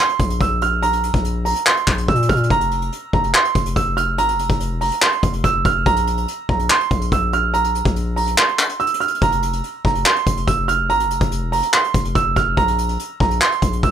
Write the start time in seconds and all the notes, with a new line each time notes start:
0.00 C6
0.09 closed hi-hat
0.19 A#1, kick, closed hi-hat
0.30 closed hi-hat
0.41 A#1 E6, kick, closed hi-hat
0.61 F6, closed hi-hat
0.82 A#5, closed hi-hat
0.93 closed hi-hat
1.03 closed hi-hat
1.14 A#1, kick, closed hi-hat
1.25 closed hi-hat
1.45 A#5, open hi-hat
1.56 closed hi-hat
1.66 C6, clap, closed hi-hat
1.77 closed hi-hat
1.87 A#1, kick, clap, closed hi-hat
1.98 closed hi-hat
2.08 A#2 E6, kick, closed hi-hat
2.15 closed hi-hat
2.22 closed hi-hat
2.29 A#2 F6, kick, closed hi-hat
2.36 closed hi-hat
2.43 closed hi-hat
2.50 F1 A#5, kick, closed hi-hat
2.61 closed hi-hat
2.71 closed hi-hat
2.82 closed hi-hat
2.92 closed hi-hat
3.13 F1 A#5, kick
3.24 closed hi-hat
3.34 C6, clap, closed hi-hat
3.45 closed hi-hat
3.55 F1, kick, closed hi-hat
3.66 closed hi-hat
3.76 F1 E6, kick, closed hi-hat
3.97 F6, closed hi-hat
4.18 G#1 A#5, closed hi-hat
4.29 closed hi-hat
4.34 F1
4.39 closed hi-hat
4.50 F1, kick, closed hi-hat
4.60 closed hi-hat
4.71 E1
4.81 F1 A#5, open hi-hat
4.91 closed hi-hat
5.02 C6, clap, closed hi-hat
5.13 closed hi-hat
5.23 F1, kick, closed hi-hat
5.33 closed hi-hat
5.44 F1 E6, kick, closed hi-hat
5.65 F1 F6, kick, closed hi-hat
5.86 A#1 A#5, kick, closed hi-hat
5.96 closed hi-hat
6.07 closed hi-hat
6.17 closed hi-hat
6.28 closed hi-hat
6.49 A#1 A#5, kick
6.59 closed hi-hat
6.70 C6, clap, closed hi-hat
6.80 closed hi-hat
6.91 A#1, kick, closed hi-hat
7.01 closed hi-hat
7.12 A#1 E6, kick, closed hi-hat
7.33 F6, closed hi-hat
7.54 A#5, closed hi-hat
7.64 closed hi-hat
7.75 closed hi-hat
7.85 A#1, kick, closed hi-hat
7.96 closed hi-hat
8.16 A#5, open hi-hat
8.27 closed hi-hat
8.38 C6, clap, closed hi-hat
8.48 closed hi-hat
8.59 clap, closed hi-hat
8.69 closed hi-hat
8.80 E6, closed hi-hat
8.87 closed hi-hat
8.94 closed hi-hat
9.00 F6, closed hi-hat
9.08 closed hi-hat
9.15 closed hi-hat
9.22 F1 A#5, kick, closed hi-hat
9.32 closed hi-hat
9.43 closed hi-hat
9.53 closed hi-hat
9.64 closed hi-hat
9.85 F1 A#5, kick
9.95 closed hi-hat
10.06 C6, clap, closed hi-hat
10.16 closed hi-hat
10.26 F1, kick, closed hi-hat
10.37 closed hi-hat
10.47 F1 E6, kick, closed hi-hat
10.68 F6, closed hi-hat
10.89 G#1 A#5, closed hi-hat
11.00 closed hi-hat
11.05 F1
11.11 closed hi-hat
11.21 F1, kick, closed hi-hat
11.32 closed hi-hat
11.42 E1
11.52 F1 A#5, open hi-hat
11.63 closed hi-hat
11.73 C6, clap, closed hi-hat
11.84 closed hi-hat
11.94 F1, kick, closed hi-hat
12.05 closed hi-hat
12.15 F1 E6, kick, closed hi-hat
12.36 F1 F6, kick, closed hi-hat
12.57 A#1 A#5, kick, closed hi-hat
12.68 closed hi-hat
12.78 closed hi-hat
12.89 closed hi-hat
12.99 closed hi-hat
13.20 A#1 A#5, kick
13.31 closed hi-hat
13.41 C6, clap, closed hi-hat
13.52 closed hi-hat
13.62 A#1, kick, closed hi-hat
13.73 closed hi-hat
13.83 A#1 E6, kick, closed hi-hat